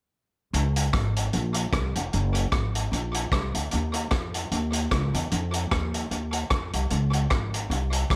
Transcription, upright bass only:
0.53 C#2
0.94 G#1
1.33 A#1
1.73 C2
1.96 F1
2.14 F#1
2.53 G#1
2.92 A#1
3.32 C2
3.54 D2
3.73 D#2
4.11 F2
4.52 D#2
4.91 C#2
5.14 E2
5.32 F2
5.72 D#2
6.11 D#2
6.51 F2
6.74 C2
6.91 C#2
7.31 G#1
7.70 C2
8.10 C#2

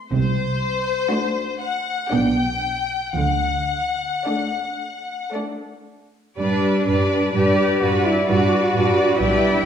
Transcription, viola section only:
1.10 A3 D4
2.11 B3 D4
4.27 A3 D4
5.34 A3 D4
6.38 G3 D4
6.88 G3 D4
7.35 G3 D4
7.82 G3 D4
8.28 G3 D4
8.75 G3 D4
9.20 G3 D4

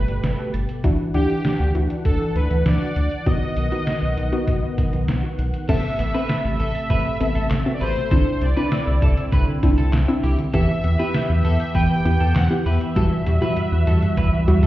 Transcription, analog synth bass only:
0.08 G1
0.23 G1
0.54 G1
0.84 D2
1.14 D2
1.60 D2
1.75 D2
2.05 D2
2.35 D2
2.51 D2
2.66 D2
2.96 D2
3.26 B1
3.57 B1
4.02 B1
4.17 B1
4.48 B1
4.78 B1
4.93 B1
5.08 B1
5.38 B1
5.69 A1
5.99 A1
6.45 A1
6.60 A1
6.90 A1
7.20 A1
7.36 A1
7.51 A1
7.81 A1
8.11 C2
8.41 C2
8.87 C2
9.02 C2
9.32 C2
9.63 C2
9.78 C2
9.93 C2
10.23 C2
10.54 E2
10.84 E2
11.29 E2
11.45 E2
11.75 E2
12.05 E2
12.20 E2
12.36 E2
12.66 E2
12.96 E2
13.26 E2
13.72 E2
13.87 E2
14.17 E2
14.48 E2
14.63 E2

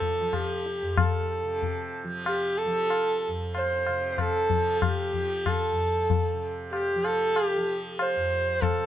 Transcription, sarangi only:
Already playing: A4
0.36 G4
0.99 A4
2.25 G4
2.57 A4
3.55 C5
4.11 C5
4.19 A4
4.75 A4
4.83 G4
5.47 A4
6.72 G4
7.04 A4
7.46 G4
8.00 C5
8.61 A4

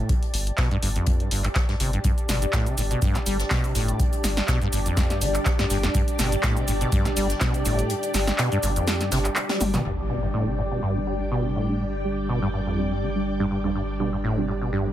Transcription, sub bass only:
0.34 G1
0.83 G1
1.31 G1
1.80 G1
2.29 G1
2.78 G1
3.27 G1
3.75 G1
4.24 G1
4.73 G1
5.22 G1
5.70 G1
6.19 G1
6.68 G1
7.17 G1
7.66 G1
8.14 G1
8.63 G1
9.12 G1
9.61 G1
9.85 G1

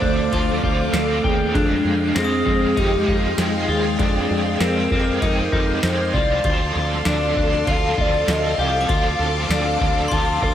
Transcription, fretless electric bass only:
0.02 D2
0.32 D2
0.63 D2
0.92 D2
1.24 D#2
1.54 F2
1.84 F2
2.15 F2
2.46 F2
2.77 F2
3.08 F2
3.37 F2
3.68 D#2
3.99 F2
4.30 F2
4.60 F2
4.91 F2
5.22 F2
5.52 F2
5.83 F2
6.13 C2
6.44 D2
6.75 D2
7.05 D2
7.36 D2
7.67 D2
7.98 D2
8.27 D2
8.58 C2
8.89 D2
9.19 D2
9.49 D2
9.80 D2
10.11 D2
10.42 D2

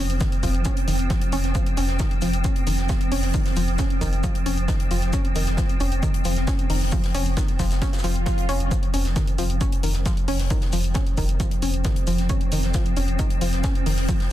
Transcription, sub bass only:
0.10 F1
0.43 F1
0.55 F1
0.88 F1
0.99 F1
1.33 F1
1.44 F1
1.77 F1
1.89 F1
2.22 F1
2.34 F1
2.67 F1
2.78 F1
3.12 F1
3.23 F1
3.56 F1
3.68 F1
4.01 F1
4.13 F1
4.46 F1
4.58 F1
4.91 F1
5.02 F1
5.35 F1
5.47 F1
5.80 F1
5.92 F1
6.25 F1
6.37 F1
6.70 F1
6.81 F1
7.15 F1
7.26 F1
7.59 F1
7.71 F1
8.04 F1
8.16 F1
8.49 F1
8.60 F1
8.94 F1
9.05 F1
9.39 F1
9.50 F1
9.83 F1
9.95 F1
10.28 F1
10.40 F1
10.73 F1
10.84 F1
11.18 F1
11.29 F1
11.62 F1
11.74 F1
12.07 F1
12.19 F1
12.52 F1
12.63 F1
12.97 F1
13.08 F1
13.41 F1
13.53 F1
13.86 F1
13.98 F1

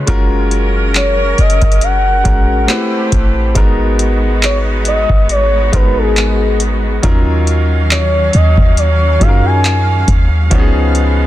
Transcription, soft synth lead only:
0.96 C#5
1.40 D#5
1.83 F#5
4.44 C#5
4.88 D#5
5.31 C#5
5.74 B4
5.98 G#4
7.92 C#5
8.35 D#5
8.78 C#5
9.22 F5
9.45 G#5

